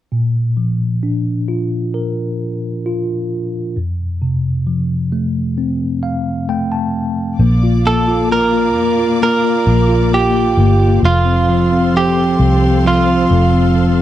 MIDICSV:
0, 0, Header, 1, 5, 480
1, 0, Start_track
1, 0, Key_signature, -2, "major"
1, 0, Tempo, 909091
1, 66, Time_signature, 4, 2, 24, 8
1, 7402, End_track
2, 0, Start_track
2, 0, Title_t, "String section"
2, 0, Program_c, 0, 48
2, 3903, Note_on_c, 0, 74, 51
2, 3904, Note_on_c, 0, 58, 54
2, 3904, Note_on_c, 0, 86, 58
2, 3905, Note_on_c, 0, 77, 47
2, 5805, Note_off_c, 0, 74, 0
2, 5806, Note_off_c, 0, 58, 0
2, 5806, Note_off_c, 0, 77, 0
2, 5806, Note_off_c, 0, 86, 0
2, 5824, Note_on_c, 0, 72, 50
2, 5824, Note_on_c, 0, 84, 60
2, 5825, Note_on_c, 0, 69, 52
2, 5825, Note_on_c, 0, 77, 50
2, 7402, Note_off_c, 0, 69, 0
2, 7402, Note_off_c, 0, 72, 0
2, 7402, Note_off_c, 0, 77, 0
2, 7402, Note_off_c, 0, 84, 0
2, 7402, End_track
3, 0, Start_track
3, 0, Title_t, "Clean electric guitar"
3, 0, Program_c, 1, 27
3, 4154, Note_on_c, 1, 69, 64
3, 4374, Note_off_c, 1, 69, 0
3, 4394, Note_on_c, 1, 70, 75
3, 4849, Note_off_c, 1, 70, 0
3, 4874, Note_on_c, 1, 70, 73
3, 5353, Note_off_c, 1, 70, 0
3, 5355, Note_on_c, 1, 67, 59
3, 5809, Note_off_c, 1, 67, 0
3, 5836, Note_on_c, 1, 65, 68
3, 6317, Note_off_c, 1, 65, 0
3, 6319, Note_on_c, 1, 67, 66
3, 6796, Note_off_c, 1, 67, 0
3, 6798, Note_on_c, 1, 65, 59
3, 7402, Note_off_c, 1, 65, 0
3, 7402, End_track
4, 0, Start_track
4, 0, Title_t, "Tine electric piano"
4, 0, Program_c, 2, 4
4, 63, Note_on_c, 2, 46, 36
4, 168, Control_c, 2, 64, 127
4, 301, Note_on_c, 2, 53, 29
4, 544, Note_on_c, 2, 62, 34
4, 783, Note_on_c, 2, 65, 34
4, 1025, Note_on_c, 2, 70, 34
4, 1242, Note_off_c, 2, 53, 0
4, 1484, Note_off_c, 2, 62, 0
4, 1503, Note_off_c, 2, 65, 0
4, 1510, Note_on_c, 2, 65, 37
4, 1963, Note_off_c, 2, 46, 0
4, 1964, Note_off_c, 2, 70, 0
4, 1973, Note_off_c, 2, 65, 0
4, 1988, Note_on_c, 2, 41, 43
4, 1993, Control_c, 2, 64, 0
4, 2091, Control_c, 2, 64, 127
4, 2226, Note_on_c, 2, 48, 31
4, 2465, Note_on_c, 2, 53, 31
4, 2705, Note_on_c, 2, 57, 36
4, 2945, Note_on_c, 2, 60, 37
4, 3165, Note_off_c, 2, 48, 0
4, 3183, Note_on_c, 2, 77, 46
4, 3404, Note_off_c, 2, 53, 0
4, 3407, Note_off_c, 2, 77, 0
4, 3420, Note_off_c, 2, 57, 0
4, 3426, Note_on_c, 2, 57, 38
4, 3427, Note_on_c, 2, 79, 46
4, 3538, Note_off_c, 2, 79, 0
4, 3546, Note_on_c, 2, 81, 44
4, 3884, Note_off_c, 2, 60, 0
4, 3885, Note_off_c, 2, 81, 0
4, 3886, Note_off_c, 2, 41, 0
4, 3892, Note_off_c, 2, 57, 0
4, 3906, Note_on_c, 2, 58, 48
4, 3912, Control_c, 2, 64, 0
4, 4016, Control_c, 2, 64, 127
4, 4030, Note_on_c, 2, 65, 35
4, 4142, Note_off_c, 2, 58, 0
4, 4148, Note_on_c, 2, 58, 36
4, 4258, Note_off_c, 2, 65, 0
4, 4264, Note_on_c, 2, 65, 42
4, 4383, Note_off_c, 2, 58, 0
4, 4389, Note_on_c, 2, 58, 42
4, 4499, Note_off_c, 2, 65, 0
4, 4506, Note_on_c, 2, 65, 38
4, 4614, Note_off_c, 2, 58, 0
4, 4620, Note_on_c, 2, 58, 41
4, 4739, Note_off_c, 2, 65, 0
4, 4746, Note_on_c, 2, 65, 36
4, 4858, Note_off_c, 2, 58, 0
4, 4865, Note_on_c, 2, 58, 49
4, 4977, Note_off_c, 2, 65, 0
4, 4983, Note_on_c, 2, 65, 39
4, 5097, Note_off_c, 2, 58, 0
4, 5103, Note_on_c, 2, 58, 39
4, 5213, Note_off_c, 2, 65, 0
4, 5220, Note_on_c, 2, 65, 46
4, 5332, Note_off_c, 2, 58, 0
4, 5338, Note_on_c, 2, 58, 46
4, 5454, Note_off_c, 2, 65, 0
4, 5460, Note_on_c, 2, 65, 40
4, 5576, Note_off_c, 2, 58, 0
4, 5583, Note_on_c, 2, 58, 45
4, 5698, Note_off_c, 2, 65, 0
4, 5704, Note_on_c, 2, 65, 40
4, 5817, Note_off_c, 2, 58, 0
4, 5821, Note_off_c, 2, 65, 0
4, 5823, Note_on_c, 2, 53, 51
4, 5832, Control_c, 2, 64, 0
4, 5938, Control_c, 2, 64, 127
4, 5941, Note_on_c, 2, 60, 38
4, 6058, Note_off_c, 2, 53, 0
4, 6064, Note_on_c, 2, 53, 42
4, 6181, Note_off_c, 2, 60, 0
4, 6187, Note_on_c, 2, 60, 46
4, 6295, Note_off_c, 2, 53, 0
4, 6301, Note_on_c, 2, 53, 40
4, 6418, Note_off_c, 2, 60, 0
4, 6424, Note_on_c, 2, 60, 37
4, 6534, Note_off_c, 2, 53, 0
4, 6540, Note_on_c, 2, 53, 44
4, 6655, Note_off_c, 2, 60, 0
4, 6661, Note_on_c, 2, 60, 40
4, 6775, Note_off_c, 2, 53, 0
4, 6781, Note_on_c, 2, 53, 53
4, 6893, Note_off_c, 2, 60, 0
4, 6900, Note_on_c, 2, 60, 40
4, 7013, Note_off_c, 2, 53, 0
4, 7020, Note_on_c, 2, 53, 43
4, 7135, Note_off_c, 2, 60, 0
4, 7141, Note_on_c, 2, 60, 44
4, 7250, Note_off_c, 2, 53, 0
4, 7257, Note_on_c, 2, 53, 51
4, 7374, Note_off_c, 2, 60, 0
4, 7380, Note_on_c, 2, 60, 42
4, 7402, Note_off_c, 2, 53, 0
4, 7402, Note_off_c, 2, 60, 0
4, 7402, End_track
5, 0, Start_track
5, 0, Title_t, "Fingered electric bass"
5, 0, Program_c, 3, 33
5, 3903, Note_on_c, 3, 34, 75
5, 4622, Note_off_c, 3, 34, 0
5, 4622, Note_on_c, 3, 41, 64
5, 5083, Note_off_c, 3, 41, 0
5, 5104, Note_on_c, 3, 34, 56
5, 5564, Note_off_c, 3, 34, 0
5, 5582, Note_on_c, 3, 31, 62
5, 5807, Note_off_c, 3, 31, 0
5, 5821, Note_on_c, 3, 29, 65
5, 6522, Note_off_c, 3, 29, 0
5, 6544, Note_on_c, 3, 36, 74
5, 7004, Note_off_c, 3, 36, 0
5, 7025, Note_on_c, 3, 29, 67
5, 7402, Note_off_c, 3, 29, 0
5, 7402, End_track
0, 0, End_of_file